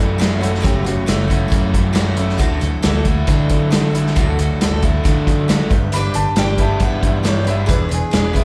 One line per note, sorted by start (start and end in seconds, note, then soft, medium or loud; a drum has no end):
0.00 0.66 F#2 loud
0.00 0.19 E3 medium
0.00 0.64 F#3 medium
0.00 0.19 A3 medium
0.00 0.21 A3 medium
0.00 0.87 C#4 medium
0.00 0.42 E4 medium
0.00 0.20 F#4 medium
0.00 0.42 D5 medium
0.18 0.41 F#2 medium
0.18 0.42 E3 medium
0.18 0.41 F#3 medium
0.18 0.41 A3 medium
0.18 1.08 A3 medium
0.18 0.41 C#4 medium
0.18 0.39 F#4 medium
0.18 snare loud
0.18 closed hi-hat medium
0.41 0.61 E3 soft
0.41 0.62 A3 soft
0.41 0.62 C#4 soft
0.41 1.30 E4 medium
0.41 0.62 F#4 medium
0.41 closed hi-hat medium
0.45 0.65 A4 medium
0.54 snare soft
0.61 0.84 F#2 medium
0.61 0.85 E3 medium
0.61 0.85 F#3 medium
0.61 0.85 A3 medium
0.61 0.83 C#4 medium
0.61 0.83 F#4 medium
0.61 kick loud
0.65 0.83 F#1 medium
0.65 1.74 F#3 medium
0.65 0.87 G4 medium
0.65 closed hi-hat medium
0.84 0.96 F#1 medium
0.84 1.07 E3 soft
0.84 1.07 A3 soft
0.84 1.06 C#4 medium
0.84 1.07 F#4 soft
0.84 1.71 F#4 medium
0.84 closed hi-hat medium
1.06 1.45 F#1 medium
1.06 1.29 F#2 medium
1.06 1.30 E3 medium
1.06 1.30 F#3 medium
1.06 1.29 A3 medium
1.06 1.96 A3 medium
1.06 1.28 C#4 medium
1.06 1.26 F#4 medium
1.06 snare loud
1.06 closed hi-hat medium
1.28 1.47 E3 soft
1.28 1.49 A3 medium
1.28 1.49 C#4 medium
1.28 2.17 E4 medium
1.28 1.51 F#4 medium
1.28 kick medium
1.28 closed hi-hat medium
1.48 1.93 E3 medium
1.48 1.94 A3 medium
1.48 1.94 C#4 medium
1.48 2.40 C#4 medium
1.48 kick loud
1.48 closed hi-hat medium
1.52 2.40 F#2 medium
1.52 1.95 F#4 medium
1.74 3.10 F#3 medium
1.74 kick medium
1.74 closed hi-hat medium
1.93 2.17 F#2 medium
1.93 2.17 E3 medium
1.93 2.17 F#3 medium
1.93 2.18 A3 medium
1.93 2.84 A3 medium
1.93 2.17 C#4 medium
1.93 2.16 F#4 medium
1.93 snare loud
1.93 closed hi-hat medium
2.17 2.37 E3 soft
2.17 2.38 A3 soft
2.17 2.39 C#4 soft
2.17 2.43 E4 medium
2.17 2.38 F#4 medium
2.17 closed hi-hat soft
2.29 snare soft
2.37 2.59 D2 medium
2.37 2.61 D3 medium
2.37 3.50 D3 medium
2.37 2.61 E3 medium
2.37 2.61 F#3 medium
2.37 2.60 A3 medium
2.37 2.58 F#4 medium
2.37 2.59 A4 medium
2.37 kick loud
2.37 closed hi-hat medium
2.60 2.71 D2 medium
2.60 2.81 E3 soft
2.60 2.83 A3 soft
2.60 2.83 F#4 medium
2.60 2.82 A4 medium
2.60 closed hi-hat medium
2.82 3.22 D2 loud
2.82 3.05 D3 medium
2.82 3.05 E3 medium
2.82 3.06 F#3 medium
2.82 3.06 A3 medium
2.82 3.73 A3 medium
2.82 3.05 F#4 medium
2.82 3.06 A4 medium
2.82 snare loud
2.82 closed hi-hat medium
3.05 3.28 A3 medium
3.05 3.95 E4 medium
3.05 3.28 F#4 medium
3.05 3.29 A4 medium
3.05 kick medium
3.05 closed hi-hat medium
3.09 3.27 E3 soft
3.27 4.18 D3 loud
3.27 3.71 E3 medium
3.27 3.71 A3 medium
3.27 4.86 D4 medium
3.27 3.71 F#4 medium
3.27 3.71 A4 medium
3.27 kick loud
3.27 closed hi-hat medium
3.49 4.61 F#3 medium
3.49 kick medium
3.49 closed hi-hat medium
3.70 3.93 D3 medium
3.70 3.94 E3 medium
3.70 3.94 F#3 medium
3.70 3.93 A3 medium
3.70 4.60 A3 medium
3.70 3.90 F#4 medium
3.70 3.91 A4 medium
3.70 snare loud
3.70 closed hi-hat medium
3.91 4.15 E3 soft
3.91 4.16 A3 soft
3.91 4.15 F#4 medium
3.91 4.16 A4 medium
3.91 closed hi-hat medium
3.95 4.82 E4 medium
4.07 snare soft
4.16 4.35 D2 medium
4.16 4.38 D3 medium
4.16 5.27 D3 medium
4.16 4.38 E3 medium
4.16 4.38 F#3 medium
4.16 4.39 A3 medium
4.16 4.38 F#4 medium
4.16 4.39 A4 medium
4.16 kick loud
4.16 closed hi-hat medium
4.39 4.48 D2 medium
4.39 4.60 E3 soft
4.39 4.62 A3 soft
4.39 4.61 F#4 medium
4.39 4.61 A4 soft
4.39 closed hi-hat medium
4.61 4.98 D2 loud
4.61 4.83 D3 medium
4.61 4.83 E3 medium
4.61 4.83 F#3 medium
4.61 5.48 A3 medium
4.61 4.84 A3 medium
4.61 4.81 F#4 medium
4.61 4.83 A4 medium
4.61 snare loud
4.61 closed hi-hat medium
4.82 5.02 E3 soft
4.82 5.04 A3 medium
4.82 6.59 E4 medium
4.82 5.04 F#4 medium
4.82 5.05 A4 medium
4.82 kick medium
4.82 closed hi-hat medium
5.04 5.61 D3 loud
5.04 5.49 E3 medium
5.04 5.48 A3 medium
5.04 6.62 D4 medium
5.04 5.49 F#4 medium
5.04 5.49 A4 medium
5.04 kick loud
5.04 closed hi-hat medium
5.26 5.70 F#3 medium
5.26 kick medium
5.26 closed hi-hat medium
5.48 5.70 D3 medium
5.48 5.71 E3 medium
5.48 5.71 F#3 medium
5.48 5.71 A3 medium
5.48 5.70 F#4 medium
5.48 5.71 A4 loud
5.48 snare loud
5.48 closed hi-hat medium
5.70 6.08 G1 loud
5.70 5.91 G2 medium
5.70 5.94 D4 soft
5.70 5.93 G4 medium
5.70 5.92 B4 medium
5.70 kick loud
5.70 closed hi-hat medium
5.92 7.02 G2 medium
5.92 6.16 E3 loud
5.92 6.16 G3 medium
5.92 6.16 D4 medium
5.92 6.14 B5 medium
5.92 closed hi-hat medium
5.96 6.15 G4 medium
5.96 6.12 B4 medium
6.13 6.25 G1 medium
6.13 6.36 G4 soft
6.13 6.36 B4 medium
6.13 6.36 A5 medium
6.13 closed hi-hat medium
6.18 6.35 D4 soft
6.36 6.74 G1 medium
6.36 6.59 E3 medium
6.36 6.58 G3 medium
6.36 7.24 G3 medium
6.36 6.58 D4 medium
6.36 6.58 G4 medium
6.36 6.56 B4 medium
6.36 6.59 G5 medium
6.36 snare loud
6.36 closed hi-hat medium
6.57 6.79 D4 soft
6.57 7.46 E4 medium
6.57 6.81 G4 medium
6.57 6.80 B4 medium
6.57 6.81 A5 medium
6.57 kick medium
6.57 closed hi-hat medium
6.80 7.71 G2 loud
6.80 7.22 E3 medium
6.80 7.68 B3 medium
6.80 7.24 D4 medium
6.80 7.24 G4 medium
6.80 7.25 B4 medium
6.80 7.03 F#5 medium
6.80 kick loud
6.80 closed hi-hat medium
7.02 7.68 E3 medium
7.02 kick medium
7.02 closed hi-hat medium
7.07 7.26 E5 medium
7.23 7.46 E3 medium
7.23 7.46 G3 medium
7.23 7.69 G3 medium
7.23 7.46 D4 medium
7.23 7.46 G4 medium
7.23 7.43 B4 medium
7.23 7.47 C#5 medium
7.23 snare loud
7.23 closed hi-hat medium
7.44 7.65 D4 soft
7.44 7.69 E4 medium
7.44 7.66 G4 soft
7.44 7.67 B4 medium
7.44 closed hi-hat medium
7.50 7.70 E5 medium
7.66 7.87 E1 medium
7.66 8.44 E2 medium
7.66 7.89 E3 medium
7.66 7.89 D4 medium
7.66 7.89 G#4 medium
7.66 7.88 B4 loud
7.66 kick loud
7.66 closed hi-hat medium
7.70 7.91 B4 medium
7.89 8.00 E1 medium
7.89 8.10 D4 soft
7.89 8.12 G#4 soft
7.89 8.11 B4 medium
7.89 closed hi-hat medium
7.94 8.34 G#4 medium
8.11 8.44 E1 loud
8.11 8.34 E3 medium
8.11 8.44 G#3 medium
8.11 8.34 D4 medium
8.11 8.33 G#4 medium
8.11 8.32 B4 medium
8.11 snare loud
8.11 closed hi-hat medium
8.33 8.44 D4 soft
8.33 8.44 E4 medium
8.33 8.44 G#4 medium
8.33 8.44 B4 medium
8.33 kick medium
8.33 closed hi-hat medium